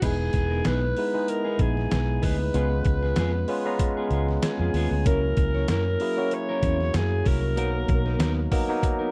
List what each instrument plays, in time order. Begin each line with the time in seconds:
0.01 fingered electric bass E1, tine electric piano G#3 B3 D#4 E4 B4, clean electric guitar B3 D#4 G#4, alto saxophone G#4, kick, closed hi-hat, crash
0.19 muted clean electric guitar stroke
0.33 fingered electric bass E1, muted clean electric guitar stroke, kick, closed hi-hat
0.50 clean electric guitar B3 D#4 A#4, snare
0.65 fingered electric bass B1, clean electric guitar B3 D#4 G#4, alto saxophone B4, snare, closed hi-hat
0.82 muted clean electric guitar stroke
0.97 tine electric piano G#3 B3 D#4 E4 B4, muted clean electric guitar stroke, open hi-hat
1.14 tine electric piano G#3 B3 D#4 E4 G#4, clean electric guitar B3 D#4 G#4
1.28 alto saxophone A#4, muted clean electric guitar stroke, closed hi-hat
1.45 clean electric guitar B3 D#4 G#4
1.59 fingered electric bass A#1, clean electric guitar B3 D#4 G#4, alto saxophone G#4, kick, closed hi-hat
1.76 muted clean electric guitar stroke, snare
1.91 fingered electric bass B1, snare, closed hi-hat
2.08 muted clean electric guitar stroke
2.22 fingered electric bass D2, clean electric guitar B3 D#4 G#4, alto saxophone B4, kick, open hi-hat
2.40 muted clean electric guitar stroke
2.54 fingered electric bass C#2, tine electric piano G#3 B3 C#4 F4 B4, clean electric guitar B3 F4 G#4, closed hi-hat
2.71 muted clean electric guitar stroke
2.85 fingered electric bass C#2, muted clean electric guitar stroke, kick, closed hi-hat
3.02 clean electric guitar B3 F4 G#4, snare
3.16 fingered electric bass F2, clean electric guitar B3 F4 G#4, snare, closed hi-hat
3.34 muted clean electric guitar stroke
3.48 tine electric piano G#3 B3 C#4 F4 B4, muted clean electric guitar stroke, open hi-hat
3.65 tine electric piano G#3 B3 C#4 F4 A#5, clean electric guitar B3 F4 G#4
3.79 muted clean electric guitar stroke, kick, closed hi-hat
3.97 clean electric guitar B3 F4 G#4
4.10 fingered electric bass C#2, clean electric guitar B3 F4 G#4, closed hi-hat
4.29 muted clean electric guitar stroke, snare
4.42 alto saxophone G#4, muted clean electric guitar stroke, snare, closed hi-hat
4.60 fingered electric bass F2, clean electric guitar B3 F4 G#4
4.74 fingered electric bass D#2, clean electric guitar B3 F4 G#4, open hi-hat
4.91 fingered electric bass D2, muted clean electric guitar stroke
5.06 fingered electric bass C#2, tine electric piano F#3 A#3 C#4 E4 A#4, clean electric guitar C#4 E4 A#4, alto saxophone A#4, kick, closed hi-hat
5.23 muted clean electric guitar stroke
5.37 fingered electric bass C#2, muted clean electric guitar stroke, kick, closed hi-hat
5.54 clean electric guitar C#4 E4 C#5, snare
5.68 fingered electric bass F#2, clean electric guitar C#4 E4 A#4, alto saxophone A#4, snare, closed hi-hat
5.86 muted clean electric guitar stroke
6.00 tine electric piano F#3 A#3 C#4 E4 G#4, muted clean electric guitar stroke, open hi-hat
6.17 tine electric piano F#3 A#3 C#4 E4 F#4, clean electric guitar C#4 E4 A#4
6.31 alto saxophone C#5, muted clean electric guitar stroke, closed hi-hat
6.49 clean electric guitar C#4 E4 A#4
6.63 fingered electric bass E2, clean electric guitar C#4 E4 A#4, kick, closed hi-hat
6.80 muted clean electric guitar stroke, snare
6.94 fingered electric bass F#2, alto saxophone G#4, muted clean electric guitar stroke, snare, closed hi-hat
7.11 muted clean electric guitar stroke
7.25 fingered electric bass C2, clean electric guitar C#4 E4 A#4, alto saxophone A#4, kick, open hi-hat
7.42 muted clean electric guitar stroke
7.56 fingered electric bass B1, tine electric piano F#3 A#3 B3 D#4 A#4, clean electric guitar B3 D#4 A#4, closed hi-hat
7.74 muted clean electric guitar stroke
7.88 fingered electric bass B1, muted clean electric guitar stroke, kick, closed hi-hat
8.05 clean electric guitar B3 D#4 A#4, snare
8.19 fingered electric bass D#2, clean electric guitar B3 D#4 A#4, snare, closed hi-hat
8.36 muted clean electric guitar stroke
8.50 tine electric piano F#3 A#3 B3 D#4 A#4, muted clean electric guitar stroke, kick, open hi-hat
8.67 tine electric piano F#3 A#3 B3 D#4 A#4, clean electric guitar B3 D#4 A#4
8.82 muted clean electric guitar stroke, kick, closed hi-hat
8.99 clean electric guitar B3 D#4 A#4